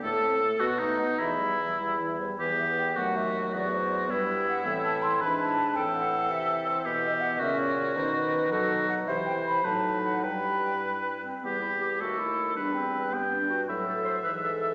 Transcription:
<<
  \new Staff \with { instrumentName = "Flute" } { \time 6/8 \key e \minor \tempo 4. = 107 a''4. fis''8 dis''4 | e''2~ e''8 c''8 | b'8 e''8 g''8 fis''8 e''4 | d''8 c''4 b'4 fis''8 |
e''8 a''8 c'''8 b''8 a''4 | g''8 fis''4 e''4 c''8 | b'8 dis''8 fis''8 e''8 cis''4 | c''8 b'4 a'4 fis''8 |
e''8 g''8 b''8 a''4 fis''8 | g''2~ g''8 r8 | b'4. a'4. | b'2.~ |
b'4. b'4. | }
  \new Staff \with { instrumentName = "Oboe" } { \time 6/8 \key e \minor a'4. fis'8 dis'4 | e'2~ e'8 r8 | g'4. fis'4. | fis'4. e'4.~ |
e'4. b'4. | a'2. | g'4. fis'4.~ | fis'4. fis'4. |
c''4. b'4. | b'2~ b'8 r8 | g'4. a'4. | b'4. g''4. |
e''2. | }
  \new Staff \with { instrumentName = "Clarinet" } { \time 6/8 \key e \minor a'4. fis'8 dis'4 | e'2~ e'8 r8 | b4. a4. | b4. b4. |
c'4. d'4. | c'2. | b4. cis'4. | dis'4. dis'4. |
e'4. dis'4. | e'2~ e'8 c'8 | b8 e'8 g'8 fis'8 e'4 | d'8 c'4 b8 d'8 fis'8 |
e'8 a'8 c''8 b'8 a'4 | }
  \new Staff \with { instrumentName = "French horn" } { \clef bass \time 6/8 \key e \minor a8 c'8 a8 b8 a8 b8 | e8 g8 e8 g8 e8 g8 | e4. fis4.~ | fis4. g4. |
e4. e4. | e2.~ | e4. cis4. | dis4. fis4. |
e4. fis4. | g2~ g8 r8 | g4. a4. | g2. |
fis4. e4. | }
  \new Staff \with { instrumentName = "Bassoon" } { \clef bass \time 6/8 \key e \minor a,4. b,4. | e,4. e,4. | e,4. dis,4. | e,4. g,4. |
a,4. gis,4. | a,4. c4. | b,4. ais,4. | b,2. |
c4. a,4. | g,2~ g,8 r8 | e,4. dis,4. | e,4. g,4. |
a,4. gis,4. | }
>>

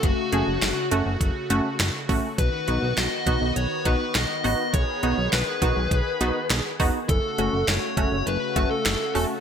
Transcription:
<<
  \new Staff \with { instrumentName = "Lead electric guitar" } { \time 4/4 \key fis \dorian \tempo 4 = 102 fis'4. r2 r8 | b'4 dis''4 cis''8 b'8 dis''8 dis''8 | cis''4 b'2 r4 | a'4 cis''4 b'8. a'8. a'8 | }
  \new Staff \with { instrumentName = "Analog polysynth" } { \time 4/4 \key fis \dorian r8 <a cis' gis'>8 r8 <a cis' fis'>8 r8 <a cis' fis'>8 r8 <a cis' fis'>8 | r8 <b dis' fis'>8 r8 <b dis' fis'>8 r8 <b dis' fis'>8 r8 <b dis' fis'>8 | r8 <b dis' fis'>8 r8 <b dis' fis'>8 r8 <b dis' fis'>8 r8 <b dis' fis'>8 | r8 <a cis' fis'>8 r8 <a cis' fis'>8 r8 <a cis' fis'>8 r8 <a cis' fis'>8 | }
  \new Staff \with { instrumentName = "Analog synth pad" } { \time 4/4 \key fis \dorian << { fis'1 | fis'1 | gis'1 | fis'1 | } \\ { <cis a>1 | <dis b>1~ | <dis b>1 | <cis a>1 | } >> }
  \new Staff \with { instrumentName = "Analog synth bass" } { \clef bass \time 4/4 \key fis \dorian fis,,16 r16 fis,,16 fis,,16 fis,,16 r16 fis,,16 fis,,16 fis,,16 r16 fis,,16 r16 fis,,16 r16 a,,16 r16 | b,,16 r16 b,,16 b,,16 b,,16 r16 b,,16 b,,16 b,,16 r16 b,,16 r16 b,,16 r16 a,,16 r16 | b,,16 r16 b,,16 b,,16 b,,16 r16 b,,16 b,,16 b,,16 r16 b,,16 r16 b,,16 r16 e,,16 r16 | fis,,16 r16 fis,,16 fis,,16 fis,,16 r16 fis,,16 fis,,16 fis,,16 r16 fis,,16 r16 fis,,16 r16 e,,16 r16 | }
  \new DrumStaff \with { instrumentName = "Drums" } \drummode { \time 4/4 <hh bd>8 hh8 <hc hh sn>8 hh8 <hh bd>8 hh8 <hc hh sn>8 <hho bd>8 | <hh bd>8 hh8 <hc hh sn>8 <hh bd>8 hh8 <hh bd>8 <hc hh sn>8 hho8 | <hh bd>8 hh8 <hc hh sn>8 <hh bd>8 <hh bd>8 hh8 <hc hh sn>8 <hho bd>8 | <hh bd>8 hh8 <hc hh sn>8 <hh bd>8 hh8 <hh bd>8 <hc hh sn>8 hho8 | }
>>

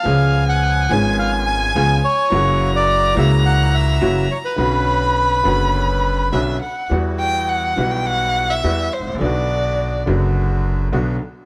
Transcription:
<<
  \new Staff \with { instrumentName = "Violin" } { \time 4/4 \key fis \phrygian \tempo 4 = 105 gis''1 | ais''1 | b''2. e''8 fis''8 | \key e \minor r8 g''8 fis''8. g''16 fis''8. e''8. c''8 |
d''4. r2 r8 | }
  \new Staff \with { instrumentName = "Bandoneon" } { \time 4/4 \key fis \phrygian eis''8. fis''8. gis''8 eis''8 gis''4 cis''8~ | cis''8. d''8. e''8 fis''8 e''4 cis''16 b'16~ | b'2. r4 | \key e \minor r1 |
r1 | }
  \new Staff \with { instrumentName = "Bandoneon" } { \time 4/4 \key fis \phrygian <eis b cis'>4. <b cis' eis'>4. <b cis' eis'>8 r8 | <ais e' fis'>4. <ais e' fis'>4. <ais e' fis'>8 r8 | <cis' b'>4. <cis' b'>4. <cis' d' b'>8 r8 | \key e \minor <g e' fis'>4. <g e' fis'>4. <g e' fis'>8 r8 |
<b d' fis'>4. <b d' fis'>4. <b d' fis'>8 r8 | }
  \new Staff \with { instrumentName = "Upright piano" } { \clef bass \time 4/4 \key fis \phrygian <cis, cis eis b cis' gis'>4. <gis,, gis, eis b cis' gis'>4. <cis, cis eis b cis' gis'>8 r8 | <fis, cis e fis ais fis'>4. <cis, cis e ais cis' fis'>4. <fis, e fis ais cis' fis'>8 r8 | <b,, b, d b cis' fis'>4. <fis,, fis, d b cis' fis'>4. <b,, b, d b cis' fis'>8 r8 | \key e \minor <e, e g b fis'>4. <b,, b, e g b fis'>4. <e, e g b fis'>8 r32 gis,,32 a,,32 ais,,32 |
<b,, b, d fis b fis'>4. <fis,, fis, d fis b fis'>4. <b,, b, d fis b fis'>8 r8 | }
  \new Staff \with { instrumentName = "Upright bass" } { \clef bass \time 4/4 \key fis \phrygian cis,4~ cis,16. r32 gis,,4~ gis,,16. r32 cis,16. r8 r32 | fis,,4~ fis,,16. r32 cis,4~ cis,16. r32 fis,,16. r8 r32 | b,,4~ b,,16. r32 fis,,4~ fis,,16. r32 b,,16. r8 r32 | \key e \minor e,4~ e,16. r32 b,,4~ b,,16. r32 e,16. r16 gis,,32 a,,32 ais,,32 |
b,,4~ b,,16. r32 fis,,4~ fis,,16. r32 b,,16. r8 r32 | }
>>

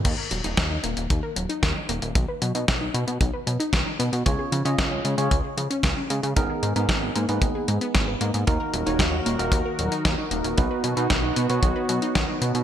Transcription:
<<
  \new Staff \with { instrumentName = "Tine electric piano" } { \time 4/4 \key ees \minor \tempo 4 = 114 r1 | r1 | <des' f' aes' des''>8. <des' f' aes' ees''>4 <des' f' aes' des''>16 r2 | <ces' ees' aes' bes'>8. <ces' ees' aes' bes'>4 <ces' ees' aes' ces''>2~ <ces' ees' aes' ces''>16 |
<bes ees' ges' bes'>8. <bes ees' ges' des''>4 <bes ees' ges' bes'>16 r2 | <b dis' fis' b'>8. <b dis' fis' b'>4 <b dis' fis' des''>2~ <b dis' fis' des''>16 | }
  \new Staff \with { instrumentName = "Analog synth pad" } { \time 4/4 \key ees \minor r1 | r1 | r1 | r1 |
<ees ees' ges' bes'>1 | <b fis'>1 | }
  \new Staff \with { instrumentName = "Synth arpeggio sound" } { \time 4/4 \key ees \minor ees16 bes'16 ges16 ees'16 ees16 ees'16 bes16 bes16 ees16 bes'16 ges16 ees'16 ees16 ees'16 bes16 bes16 | dis16 b'16 fis16 dis'16 dis16 dis'16 b16 b16 dis16 b'16 fis16 dis'16 dis16 dis'16 b16 b16 | des16 aes'16 f16 des'16 des16 des'16 aes16 aes16 des16 aes'16 f16 des'16 des16 des'16 aes16 aes16 | ees16 aes'16 aes16 ces'16 ees16 ces'16 bes16 bes16 ees16 aes'16 aes16 ces'16 ees16 ces'16 bes16 bes16 |
ees16 bes'16 ges16 ees'16 ees16 ees'16 bes16 bes16 ees16 bes'16 ges16 ees'16 ees16 ees'16 bes16 bes16 | dis16 b'16 fis16 dis'16 dis16 dis'16 b16 b16 dis16 b'16 fis16 dis'16 dis16 dis'16 b16 b16 | }
  \new Staff \with { instrumentName = "Analog synth bass" } { \clef bass \time 4/4 \key ees \minor ees,16 r16 ees,,16 ees,,16 ees,8 ees,,16 ees,,16 ees,16 r16 ees,,16 r16 ees,16 r16 ees,,16 ees,,16 | b,,16 r16 b,16 b,16 b,,8 b,16 b,16 b,,16 r16 b,16 r16 b,,16 r16 b,16 b,16 | des,16 r16 des16 des16 des,8 des16 des16 des,16 r16 des16 r16 des,16 r16 des16 des16 | aes,,16 r16 aes,16 aes,16 aes,,8 aes,16 aes,16 aes,,16 r16 aes,16 r16 aes,,8 aes,16 aes,16 |
ees,16 r16 ees,,16 ees,,16 ees,8 ees,,16 ees,,16 ees,16 r16 ees,,16 r16 ees,16 r16 ees,,16 ees,,16 | b,,16 r16 b,16 b,16 b,,8 b,16 b,16 b,,16 r16 b,16 r16 b,,16 r16 b,16 b,16 | }
  \new DrumStaff \with { instrumentName = "Drums" } \drummode { \time 4/4 <cymc hh bd>8 hh16 hh16 <hh bd sn>8 hh16 hh16 <hh bd>8 hh16 hh16 <hh bd sn>8 hh16 hh16 | <hh bd>8 hh16 hh16 <hh bd sn>8 hh16 hh16 <hh bd>8 hh16 hh16 <hh bd sn>8 hh16 hh16 | <hh bd>8 hh16 hh16 <hh bd sn>8 hh16 hh16 <hh bd>8 hh16 hh16 <hh bd sn>8 hh16 hh16 | <hh bd>8 hh16 hh16 <hh bd sn>8 hh16 hh16 <hh bd>8 hh16 hh16 <hh bd sn>8 hh16 hh16 |
<hh bd>8 hh16 hh16 <hh bd sn>8 hh16 hh16 <hh bd>8 hh16 hh16 <hh bd sn>8 hh16 hh16 | <hh bd>8 hh16 hh16 <hh bd sn>8 hh16 hh16 <hh bd>8 hh16 hh16 <hh bd sn>8 hh16 hh16 | }
>>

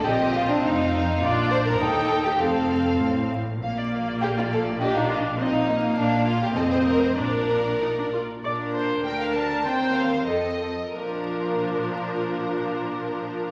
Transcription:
<<
  \new Staff \with { instrumentName = "Violin section" } { \time 2/4 \key bes \major \tempo 4 = 98 ees''4 f''4 | d''4 g''4 | f''4.~ f''16 r16 | f''16 d''16 f''16 d''16 f''16 d''16 f''16 d''16 |
ees''16 f''16 ees''16 f''16 ees''16 f''16 ees''16 f''16 | f''4 ees''4 | d''4.~ d''16 r16 | r4 g''16 f''16 a''8 |
g''8 f''8 ees''4 | bes'2~ | bes'2 | }
  \new Staff \with { instrumentName = "Violin section" } { \time 2/4 \key bes \major g'8 f'16 d'16 ees'4 | f'8 c''16 bes'16 a'8. g'16 | a'4 r4 | r4 g'16 f'16 a'8 |
g'16 ees'16 f'8 ees'4 | d'8 f'16 g'16 a'16 c''16 bes'16 c''16 | bes'4. r8 | <d' bes'>4 <d' bes'>4 |
<c' bes'>4 <c' a'>8 r8 | <f' bes'>2~ | <f' bes'>2 | }
  \new Staff \with { instrumentName = "Viola section" } { \time 2/4 \key bes \major c'2 | d'4 ees'4 | c'4. r8 | bes2 |
d'4 c'8 bes8~ | bes4 c'4 | d'4 ees'16 d'16 f'8 | d''8 c''8 bes'4 |
c''4 a'8 r8 | <f d'>2~ | <f d'>2 | }
  \new Staff \with { instrumentName = "Cello section" } { \clef bass \time 2/4 \key bes \major bes,4 f,4 | bes,4 ees,4 | f,4 a,4 | bes,2~ |
bes,2 | bes,4 f,4 | bes,4. r8 | bes,4 d,4 |
ees,4 f,8 r8 | bes,2~ | bes,2 | }
  \new Staff \with { instrumentName = "Double bass section" } { \clef bass \time 2/4 \key bes \major bes,,4 f,,4 | bes,,4 ees,4 | f,,4 a,,4 | bes,,2~ |
bes,,2 | bes,,4 f,,4 | bes,,4. r8 | r2 |
r2 | r2 | r2 | }
>>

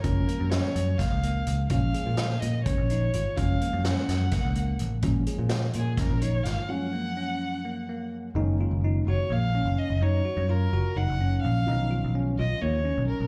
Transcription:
<<
  \new Staff \with { instrumentName = "Violin" } { \time 7/8 \key fis \major \tempo 4 = 126 ais'4 cis''4 eis''4 r8 | eis''4. dis''8 cis''4. | eis''4 fis''2 r8 | r4. gis'8 ais'8 cis''8 eis''8 |
fis''2. r8 | r4. cis''8 eis''4 dis''8 | cis''4 ais'4 fis''4 eis''8~ | eis''4 r8 dis''8 cis''4 ais'8 | }
  \new Staff \with { instrumentName = "Tine electric piano" } { \time 7/8 \key fis \major cis'8 ais8 cis'4 ais8 ais4 | cis'8 gis'8 eis'8 eis'8 cis'8 dis'8 eis'8 | cis'8 ais8 cis'4 ais8 ais4 | cis'8 gis'8 eis'8 eis'8 cis'8 dis'8 eis'8 |
cis'8 ais8 cis'4 ais8 ais4 | dis'8 eis'8 dis'8 fis'8 ais8 cis'4 | dis'8 fis'8 eis'8 fis'8 dis'8 cis'4 | dis'8 eis'8 cis'8 eis'8 ais8 cis'4 | }
  \new Staff \with { instrumentName = "Grand piano" } { \clef bass \time 7/8 \key fis \major <eis gis ais cis'>2.~ <eis gis ais cis'>8 | <eis gis ais cis'>2.~ <eis gis ais cis'>8 | <eis gis ais cis'>2.~ <eis gis ais cis'>8 | <eis gis ais cis'>2.~ <eis gis ais cis'>8 |
<fis, eis gis ais cis'>2.~ <fis, eis gis ais cis'>8 | <dis gis ais cis'>2.~ <dis gis ais cis'>8~ | <dis gis ais cis'>2.~ <dis gis ais cis'>8 | <dis eis b cis'>2.~ <dis eis b cis'>8 | }
  \new Staff \with { instrumentName = "Picked electric bass" } { \clef bass \time 7/8 \key fis \major fis,,8 r16 fis,8 r16 fis,8 r16 cis,8. cis,8 | ais,,8 r16 ais,8. ais,8 r16 ais,,8. gis,,16 r16 | fis,,8 r16 fis,8 r16 fis,8 r16 cis,8. a,,8 | ais,,8 r16 ais,8. ais,8 r16 ais,,8. gis,,16 r16 |
r2. r8 | fis,,8. fis,,8. fis,,16 r16 ais,,8. fis,,16 r16 fis,,16 | fis,8 r16 fis,8. fis,,16 r16 fis,,16 fis,,8. ais,,8 | b,,8. b,,8. b,,16 r16 dis,8. b,,16 r16 b,,16 | }
  \new DrumStaff \with { instrumentName = "Drums" } \drummode { \time 7/8 <hh bd>8 hh8 <hh sn>8 hh8 <hh bd sn>8 hh8 hh8 | <hh bd>8 hh8 <hh sn>8 hh8 <hh bd>8 hh8 hh8 | <hh bd>8 hh8 <hh sn>8 <hh sn>8 <hh bd sn>8 hh8 hh8 | <hh bd>8 hh8 <hh sn>8 hh8 <hh bd sn>8 hh8 <hh sn>8 |
r4 r4 r4. | r4 r4 r4. | r4 r4 r4. | r4 r4 r4. | }
>>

